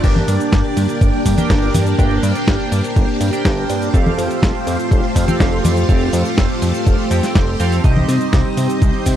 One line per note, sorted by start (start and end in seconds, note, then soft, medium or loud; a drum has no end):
0.00 0.24 G1 loud
0.00 3.90 A#3 medium
0.00 3.90 D4 medium
0.00 1.35 D4 medium
0.00 1.35 G4 medium
0.00 7.80 G4 medium
0.00 1.35 A#4 medium
0.00 1.97 D5 medium
0.00 1.35 G5 medium
0.00 kick loud
0.00 closed hi-hat medium
0.00 crash medium
0.00 cabasa soft
0.16 closed hi-hat soft
0.16 high conga medium
0.28 0.38 G2 loud
0.28 open hi-hat loud
0.28 cabasa medium
0.40 closed hi-hat medium
0.40 cabasa soft
0.52 0.62 G1 medium
0.52 kick loud
0.52 snare loud
0.52 closed hi-hat medium
0.52 cabasa soft
0.65 closed hi-hat soft
0.77 0.87 G2 medium
0.77 open hi-hat loud
0.77 cabasa medium
0.89 closed hi-hat medium
0.89 cabasa soft
1.01 1.11 G1 medium
1.01 kick loud
1.01 closed hi-hat medium
1.01 cabasa soft
1.14 closed hi-hat soft
1.26 1.36 G2 loud
1.26 kick medium
1.26 open hi-hat loud
1.26 cabasa medium
1.38 1.96 D4 medium
1.38 1.96 G4 medium
1.38 1.96 A#4 medium
1.38 1.96 G5 medium
1.38 closed hi-hat medium
1.38 high conga medium
1.38 cabasa soft
1.50 1.70 G1 loud
1.50 kick loud
1.50 snare loud
1.50 closed hi-hat medium
1.50 cabasa soft
1.62 closed hi-hat soft
1.74 1.94 G2 medium
1.74 open hi-hat loud
1.74 high conga medium
1.74 cabasa medium
1.86 closed hi-hat medium
1.86 cabasa soft
1.99 2.19 G1 loud
1.99 3.30 D4 medium
1.99 3.30 G4 medium
1.99 3.30 A#4 medium
1.99 9.16 C5 loud
1.99 3.30 G5 medium
1.99 kick loud
1.99 closed hi-hat medium
1.99 cabasa soft
2.11 closed hi-hat soft
2.23 2.33 G2 loud
2.23 open hi-hat loud
2.23 cabasa medium
2.35 closed hi-hat medium
2.35 cabasa soft
2.48 2.58 G1 medium
2.48 kick loud
2.48 snare loud
2.48 closed hi-hat soft
2.48 cabasa soft
2.60 closed hi-hat soft
2.72 2.82 G2 medium
2.72 open hi-hat loud
2.72 cabasa medium
2.84 closed hi-hat medium
2.84 cabasa soft
2.96 3.06 G1 medium
2.96 kick loud
2.96 closed hi-hat medium
2.96 cabasa soft
3.09 closed hi-hat soft
3.21 3.31 G2 loud
3.21 open hi-hat loud
3.21 cabasa medium
3.33 3.91 D4 medium
3.33 3.91 G4 medium
3.33 3.91 A#4 medium
3.33 3.91 G5 medium
3.33 closed hi-hat medium
3.33 cabasa soft
3.45 3.65 G1 loud
3.45 kick loud
3.45 snare loud
3.45 closed hi-hat medium
3.45 cabasa soft
3.57 closed hi-hat soft
3.70 3.90 G2 medium
3.70 open hi-hat loud
3.70 cabasa medium
3.82 closed hi-hat medium
3.82 cabasa soft
3.94 4.14 F1 loud
3.94 7.80 A3 medium
3.94 5.25 C4 medium
3.94 7.80 F4 medium
3.94 5.25 G4 medium
3.94 5.25 A4 medium
3.94 5.25 F5 medium
3.94 kick loud
3.94 closed hi-hat medium
3.94 cabasa soft
4.06 closed hi-hat soft
4.06 high conga medium
4.18 4.28 F2 loud
4.18 open hi-hat loud
4.18 cabasa medium
4.31 closed hi-hat medium
4.31 cabasa soft
4.42 4.53 F1 medium
4.42 kick loud
4.42 snare loud
4.42 closed hi-hat medium
4.42 cabasa soft
4.55 closed hi-hat soft
4.67 4.77 F2 medium
4.67 open hi-hat loud
4.67 cabasa medium
4.80 closed hi-hat medium
4.80 cabasa soft
4.91 5.01 F1 medium
4.91 kick loud
4.91 closed hi-hat medium
4.91 cabasa soft
5.04 closed hi-hat soft
5.16 5.26 F2 medium
5.16 kick medium
5.16 open hi-hat loud
5.16 cabasa medium
5.28 5.86 C4 medium
5.28 5.86 G4 medium
5.28 5.86 A4 medium
5.28 5.86 F5 medium
5.28 closed hi-hat medium
5.28 high conga medium
5.28 cabasa soft
5.40 5.60 F1 loud
5.40 kick loud
5.40 snare loud
5.40 closed hi-hat medium
5.40 cabasa soft
5.53 closed hi-hat soft
5.64 5.85 F2 medium
5.64 open hi-hat loud
5.64 high conga medium
5.64 cabasa medium
5.77 closed hi-hat medium
5.77 cabasa soft
5.89 6.09 F1 loud
5.89 7.08 C4 medium
5.89 7.08 G4 medium
5.89 7.08 A4 medium
5.89 7.08 F5 medium
5.89 kick loud
5.89 closed hi-hat medium
5.89 cabasa soft
6.01 closed hi-hat soft
6.13 6.23 F2 loud
6.13 open hi-hat loud
6.13 cabasa medium
6.25 closed hi-hat medium
6.25 cabasa soft
6.38 6.48 F1 medium
6.38 kick loud
6.38 snare loud
6.38 closed hi-hat soft
6.38 cabasa soft
6.50 closed hi-hat soft
6.62 6.72 F2 medium
6.62 open hi-hat loud
6.62 cabasa medium
6.74 closed hi-hat medium
6.74 cabasa soft
6.86 6.97 F1 medium
6.86 kick loud
6.86 closed hi-hat medium
6.86 cabasa soft
6.99 closed hi-hat soft
7.11 7.21 F2 medium
7.11 7.57 C4 medium
7.11 7.57 G4 medium
7.11 7.57 A4 medium
7.11 7.57 G5 medium
7.11 open hi-hat loud
7.11 cabasa medium
7.23 snare soft
7.23 closed hi-hat medium
7.23 cabasa soft
7.35 7.55 F1 loud
7.35 kick loud
7.35 snare loud
7.35 closed hi-hat medium
7.35 cabasa soft
7.48 closed hi-hat soft
7.60 7.80 F2 medium
7.60 7.81 C4 medium
7.60 7.81 G4 medium
7.60 7.81 A4 medium
7.60 7.81 F5 loud
7.60 open hi-hat loud
7.60 cabasa medium
7.72 open hi-hat medium
7.72 cabasa soft
7.84 8.04 C2 loud
7.84 9.16 G3 medium
7.84 9.15 C4 medium
7.84 9.16 C4 medium
7.84 9.15 D#4 medium
7.84 9.16 D#4 medium
7.84 9.15 G4 medium
7.84 9.15 D#5 medium
7.84 kick loud
7.84 closed hi-hat soft
7.84 cabasa soft
7.96 closed hi-hat soft
7.96 high conga medium
8.08 8.19 C3 loud
8.08 open hi-hat loud
8.08 cabasa medium
8.21 closed hi-hat soft
8.21 cabasa soft
8.33 8.43 C2 medium
8.33 kick loud
8.33 snare loud
8.33 closed hi-hat soft
8.33 cabasa soft
8.45 closed hi-hat soft
8.57 8.67 C3 medium
8.57 open hi-hat loud
8.57 cabasa medium
8.70 closed hi-hat medium
8.70 cabasa soft
8.82 8.92 C2 loud
8.82 kick loud
8.82 closed hi-hat medium
8.82 cabasa soft
8.94 closed hi-hat soft
9.06 9.16 C3 medium
9.06 kick medium
9.06 open hi-hat loud
9.06 cabasa medium